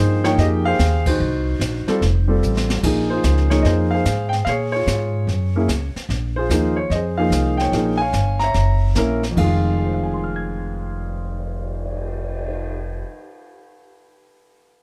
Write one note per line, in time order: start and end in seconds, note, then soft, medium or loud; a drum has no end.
0.00 0.37 G2 medium
0.00 0.19 F3 medium
0.00 0.19 A#3 medium
0.00 0.23 D#4 medium
0.00 0.40 G#4 medium
0.00 0.21 C5 loud
0.00 0.19 G5 medium
0.24 0.76 F3 medium
0.24 0.76 A#3 medium
0.24 0.77 D#4 medium
0.24 0.29 C#5 loud
0.24 0.77 G5 medium
0.24 snare soft
0.38 0.78 F2 medium
0.38 1.17 G4 medium
0.38 0.65 G#4 medium
0.38 0.45 D#5 loud
0.38 brush sweep soft
0.38 snare soft
0.65 1.17 G#4 medium
0.65 1.05 C5 medium
0.65 1.03 F5 loud
0.79 1.19 D#2 medium
0.79 snare medium
0.79 hi-hat pedal medium
1.06 2.39 D#4 medium
1.06 1.98 F#4 medium
1.06 2.39 C5 medium
1.06 kick medium
1.06 crash medium
1.20 1.59 C2 loud
1.20 brush sweep soft
1.60 1.85 A#1 medium
1.60 snare medium
1.60 hi-hat pedal medium
1.87 2.00 G3 medium
1.87 2.00 C4 medium
1.87 2.00 F4 medium
1.87 2.01 A4 medium
1.87 muted upright bass stroke soft
1.87 snare soft
2.01 2.41 F1 medium
2.01 brush sweep soft
2.01 snare soft
2.28 2.80 G3 medium
2.28 2.80 C4 medium
2.28 2.80 F4 medium
2.28 2.81 A4 medium
2.43 2.82 A1 medium
2.43 hi-hat pedal medium
2.57 snare medium
2.70 snare medium
2.83 3.23 A#1 medium
2.83 3.46 F3 medium
2.83 3.46 A#3 medium
2.83 3.46 D#4 medium
2.83 3.11 G#4 medium
2.83 brush sweep soft
2.83 kick medium
2.83 snare soft
2.83 crash medium
3.10 3.62 F4 medium
3.10 3.50 G#4 medium
3.10 3.52 C5 medium
3.24 3.63 C#2 medium
3.24 snare medium
3.24 hi-hat pedal medium
3.38 snare soft
3.50 4.02 F3 medium
3.50 4.03 A#3 medium
3.50 4.03 D#4 medium
3.50 3.65 G#4 medium
3.50 3.65 C#5 medium
3.50 snare soft
3.62 4.04 F2 medium
3.62 3.92 G#4 medium
3.62 3.93 C5 medium
3.62 3.69 D#5 medium
3.62 brush sweep medium
3.62 snare soft
3.91 4.44 G#4 medium
3.91 4.44 C5 medium
3.91 4.33 F5 medium
4.05 4.45 G#2 medium
4.05 snare medium
4.05 hi-hat pedal medium
4.29 4.34 G5 medium
4.29 snare soft
4.45 4.86 A#2 medium
4.45 4.75 G#4 medium
4.45 4.71 C#5 medium
4.45 4.51 F5 loud
4.45 brush sweep medium
4.45 snare soft
4.72 5.26 F4 medium
4.72 5.91 C#5 medium
4.77 5.56 G#4 medium
4.87 5.26 G#2 medium
4.87 snare medium
4.87 hi-hat pedal medium
5.27 5.67 F#2 medium
5.27 brush sweep medium
5.27 snare soft
5.56 5.68 A#3 medium
5.56 5.68 C#4 medium
5.56 5.68 E4 medium
5.56 5.69 G#4 medium
5.68 5.93 C#2 medium
5.68 snare medium
5.68 hi-hat pedal medium
5.95 muted upright bass stroke soft
5.95 snare soft
6.09 6.49 A#1 medium
6.09 brush sweep soft
6.09 snare soft
6.36 6.88 F4 medium
6.36 6.50 G#4 medium
6.36 6.78 C5 medium
6.50 6.89 D#2 medium
6.50 6.74 F3 medium
6.50 6.75 A#3 medium
6.50 6.75 D#4 medium
6.50 6.75 G#4 medium
6.50 snare medium
6.50 hi-hat pedal medium
6.76 6.91 C#5 medium
6.90 7.30 F2 medium
6.90 6.97 D#5 medium
6.90 brush sweep soft
6.90 snare soft
6.94 7.18 G#4 medium
6.94 7.20 C5 medium
7.18 7.70 F3 medium
7.18 7.71 A#3 medium
7.18 7.71 D#4 medium
7.18 7.71 G#4 medium
7.18 7.71 C5 medium
7.18 7.60 F5 medium
7.30 7.71 C2 medium
7.30 snare medium
7.30 hi-hat pedal medium
7.57 8.00 C#5 medium
7.57 7.96 G5 medium
7.57 snare soft
7.72 8.12 A#1 medium
7.72 7.97 F3 medium
7.72 7.98 A#3 medium
7.72 7.98 D#4 medium
7.72 7.98 G#4 medium
7.72 brush sweep soft
7.72 snare soft
7.97 8.42 C#5 medium
7.97 8.51 F5 medium
7.97 8.41 G#5 loud
8.13 8.53 G1 medium
8.13 snare medium
8.13 hi-hat pedal medium
8.39 9.20 C#5 medium
8.39 9.20 E5 medium
8.39 9.18 A#5 loud
8.39 snare soft
8.54 8.94 F#1 medium
8.54 brush sweep soft
8.54 snare soft
8.95 9.35 A#1 medium
8.95 9.20 A#3 medium
8.95 9.20 C#4 medium
8.95 9.20 E4 medium
8.95 9.21 A#4 medium
8.95 snare medium
8.95 hi-hat pedal medium
9.23 snare soft
9.31 13.00 F2 medium
9.36 13.02 F1 medium
9.36 13.04 D#3 medium
9.36 13.08 G#3 medium
9.36 9.93 F5 medium
9.36 kick medium
9.36 crash medium
9.43 13.12 F4 medium
9.64 cymbal swell soft
9.78 13.43 G#4 soft
9.86 13.50 C5 soft
9.94 13.59 F5 soft
10.03 13.68 G#5 soft
10.14 13.78 C6 soft
10.24 13.88 F6 soft
10.36 14.01 G#6 soft